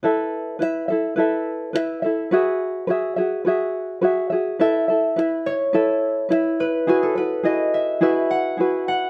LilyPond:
<<
  \new Staff \with { instrumentName = "Harp" } { \time 4/4 \key a \lydian \tempo 4 = 105 r1 | r1 | e''4 r8 cis''4. r8 b'8 | gis'16 a'16 b'8 dis''8 e''8 e''8 fis''4 fis''8 | }
  \new Staff \with { instrumentName = "Ukulele" } { \time 4/4 \key a \lydian <e' a' b' e''>4 <e' a' b' e''>8 <e' a' e''>8 <e' a' b' e''>4 <e' a' b' e''>8 <e' a' e''>8 | <fis' gis' b' e''>4 <fis' gis' b' e''>8 <fis' gis' e''>8 <fis' gis' b' e''>4 <fis' gis' b' e''>8 <fis' gis' e''>8 | <e' a' b' e''>8 <e' a' e''>8 <e' a' b' e''>4 <e' a' b' e''>4 <e' a' b' e''>4 | <e' fis' gis' b'>8 <e' fis' b'>8 <e' fis' gis' b'>4 <e' fis' gis' b'>4 <e' fis' gis' b'>4 | }
>>